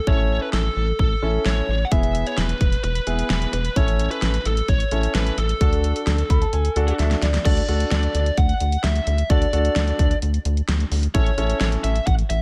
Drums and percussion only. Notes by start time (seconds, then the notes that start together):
0.07 kick
0.53 snare
0.99 kick
1.45 snare
1.92 kick, closed hi-hat
2.03 closed hi-hat
2.15 closed hi-hat
2.27 closed hi-hat
2.37 snare, closed hi-hat
2.49 closed hi-hat
2.61 kick, closed hi-hat
2.72 closed hi-hat
2.84 closed hi-hat
2.95 closed hi-hat
3.07 closed hi-hat
3.19 closed hi-hat
3.30 snare, closed hi-hat
3.42 closed hi-hat
3.53 closed hi-hat
3.65 closed hi-hat
3.76 kick, closed hi-hat
3.88 closed hi-hat
3.99 closed hi-hat
4.11 closed hi-hat
4.22 snare, closed hi-hat
4.34 closed hi-hat
4.45 closed hi-hat
4.57 closed hi-hat
4.68 kick, closed hi-hat
4.80 closed hi-hat
4.91 closed hi-hat
5.03 closed hi-hat
5.15 snare, closed hi-hat
5.27 closed hi-hat
5.38 closed hi-hat
5.49 closed hi-hat
5.61 kick, closed hi-hat
5.73 closed hi-hat
5.84 closed hi-hat
5.96 closed hi-hat
6.07 snare, closed hi-hat
6.18 closed hi-hat
6.30 kick, closed hi-hat
6.42 closed hi-hat
6.53 closed hi-hat
6.65 closed hi-hat
6.76 closed hi-hat
6.88 closed hi-hat
6.99 snare, closed hi-hat
7.11 snare, closed hi-hat
7.22 snare, closed hi-hat
7.34 snare, closed hi-hat
7.45 kick, closed hi-hat, crash
7.57 closed hi-hat
7.69 closed hi-hat
7.80 closed hi-hat
7.91 snare, closed hi-hat
8.03 closed hi-hat
8.15 closed hi-hat
8.26 closed hi-hat
8.37 kick, closed hi-hat
8.49 closed hi-hat
8.60 closed hi-hat
8.72 closed hi-hat
8.84 snare, closed hi-hat
8.96 closed hi-hat
9.07 closed hi-hat
9.18 closed hi-hat
9.30 kick, closed hi-hat
9.42 closed hi-hat
9.53 closed hi-hat
9.65 closed hi-hat
9.76 snare, closed hi-hat
9.88 closed hi-hat
9.99 kick, closed hi-hat
10.11 closed hi-hat
10.22 closed hi-hat
10.34 closed hi-hat
10.45 closed hi-hat
10.57 closed hi-hat
10.68 snare, closed hi-hat
10.80 closed hi-hat
10.92 open hi-hat
11.03 closed hi-hat
11.15 kick, closed hi-hat
11.26 closed hi-hat
11.38 closed hi-hat
11.50 closed hi-hat
11.61 snare, closed hi-hat
11.72 closed hi-hat
11.84 closed hi-hat
11.96 closed hi-hat
12.07 kick, closed hi-hat
12.19 closed hi-hat
12.30 closed hi-hat